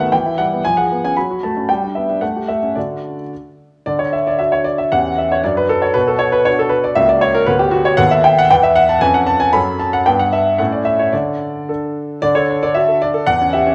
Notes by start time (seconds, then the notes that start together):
Already playing: D#3 A3 F#4 E5
0.00 B3 F#5
0.12 E3 G5
0.26 E4
0.38 G3 F#5
0.53 B3
0.65 F3 G#5
0.77 G#4 F#5
0.91 B3
1.05 C#4 G#5
1.17 F#3 B5
1.30 F#4
1.43 A3 A5
1.57 C#4
1.69 G3 G5
1.83 D4
1.95 B3 E5
2.09 D4
2.21 A3 F#5
2.36 G4
2.48 A3 E5
2.63 C#4
2.75 D3 D4 F#4 D5
3.86 D3 D5
3.99 C#5
4.12 E5
4.27 D5
4.39 D4 F#4 E5
4.52 C#5
4.65 D5
4.78 E5
4.92 E2 C#4 G4 F#5
5.18 E5
5.32 C#5
5.44 F#2 D4 F#4 D5
5.57 B4
5.69 A4
5.82 C#5
5.94 B2 B4
6.08 A4
6.19 C#5
6.33 B4
6.45 D4 F#4 C#5
6.59 A4
6.70 B4
6.84 D5
6.96 C#2 A#3 F#4 E5
7.09 D5
7.21 C#5
7.35 A#4
7.46 D2 B3 F#4 B4
7.59 G4
7.71 F#4
7.85 C#5
7.97 D#2 B3 A4 F#5
8.11 E5
8.24 G5
8.38 F#5
8.51 E2 B3 B4 G5
8.63 E5
8.76 F#5
8.89 A5
9.01 F2 C#4 B4 G#5
9.14 F#5
9.27 A5
9.40 G#5
9.53 F#2 C#4 A4 B5
9.80 A5
9.93 F#5
10.06 G2 B3 B4 G5
10.19 F#5
10.32 E5
10.58 A2 C#4 A4 F#5
10.72 D5
10.85 E5
10.99 C#5
11.12 D3 D5
11.69 D4 A4
12.22 D3 D5
12.35 A4 C#5
12.49 D4
12.62 A4 D5
12.74 F#4 E5
12.88 A4
13.01 D4 D5
13.14 A4
13.26 E2 F#5
13.41 C#4
13.53 G4 E5
13.67 C#4